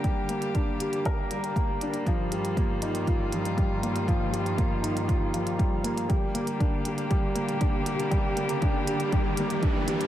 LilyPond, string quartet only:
\new Staff \with { instrumentName = "String quartet" } { \clef bass \time 4/4 \key g \minor \tempo 4 = 119 << { <d g'>1 | <g, ees f'>1~ | <g, ees f'>1 | <d g'>1~ |
<d g'>1 | } \\ { <g bes>1~ | <g bes>1~ | <g bes>1 | <g bes>1~ |
<g bes>1 | } >> }